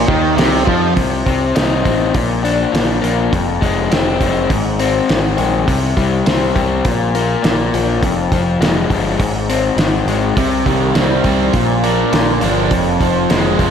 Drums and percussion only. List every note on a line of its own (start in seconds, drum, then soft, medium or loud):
0.08 kick loud
0.38 snare loud
0.38 open hi-hat medium
0.67 kick loud
0.97 kick medium
0.97 open hi-hat medium
1.26 kick medium
1.26 open hi-hat soft
1.56 snare loud
1.56 open hi-hat medium
1.85 kick medium
1.85 open hi-hat soft
2.14 kick loud
2.14 open hi-hat medium
2.45 open hi-hat soft
2.75 snare loud
2.75 open hi-hat medium
3.04 open hi-hat soft
3.33 kick loud
3.33 open hi-hat medium
3.62 kick medium
3.62 open hi-hat soft
3.92 snare loud
3.92 open hi-hat medium
4.21 kick medium
4.21 open hi-hat medium
4.50 kick loud
4.50 open hi-hat medium
4.79 open hi-hat medium
5.09 snare loud
5.09 open hi-hat medium
5.38 open hi-hat soft
5.68 kick medium
5.68 open hi-hat medium
5.97 kick medium
5.97 open hi-hat soft
6.26 snare loud
6.26 open hi-hat medium
6.56 kick medium
6.56 open hi-hat soft
6.85 kick loud
6.85 open hi-hat medium
7.15 open hi-hat soft
7.44 snare loud
7.44 open hi-hat medium
7.74 open hi-hat soft
8.03 kick loud
8.03 open hi-hat medium
8.32 kick medium
8.32 open hi-hat soft
8.62 snare loud
8.62 open hi-hat medium
8.90 kick medium
8.90 open hi-hat medium
9.20 kick loud
9.20 open hi-hat medium
9.50 open hi-hat medium
9.78 snare loud
9.78 open hi-hat medium
10.08 open hi-hat soft
10.37 kick loud
10.37 open hi-hat medium
10.66 kick medium
10.66 open hi-hat soft
10.95 snare loud
10.95 open hi-hat medium
11.24 kick medium
11.24 open hi-hat soft
11.53 kick loud
11.53 open hi-hat medium
11.84 open hi-hat soft
12.13 snare loud
12.13 open hi-hat medium
12.41 open hi-hat soft
12.71 kick loud
12.71 open hi-hat medium
13.01 kick medium
13.01 open hi-hat soft
13.30 snare loud
13.30 open hi-hat medium
13.59 kick medium
13.59 open hi-hat soft